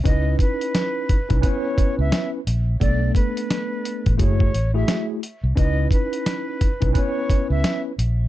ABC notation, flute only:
X:1
M:4/4
L:1/16
Q:"Swing 16ths" 1/4=87
K:C#m
V:1 name="Flute"
d2 B6 c3 e2 z3 | =d2 B6 c3 e2 z3 | d2 B6 c3 e2 z3 |]